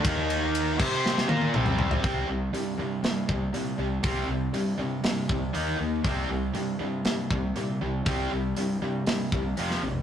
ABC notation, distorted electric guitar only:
X:1
M:4/4
L:1/8
Q:1/4=119
K:Cm
V:1 name="Distorted electric guitar" clef=bass
[E,B,E]3 [CGc]2 [B,FB] [C,G,C]2 | [C,G,C] [C,G,] [C,G,] [C,G,] [C,G,] [C,G,] [C,G,] [C,G,] | [C,G,C] [C,G,] [C,G,] [C,G,] [C,G,] [C,G,] [E,B,E] [E,B,] | [C,G,C] [C,G,] [C,G,] [C,G,] [C,G,] [C,G,] [C,G,] [C,G,] |
[C,G,C] [C,G,] [C,G,] [C,G,] [C,G,] [C,G,] [F,,C,F,] [F,,C,] |]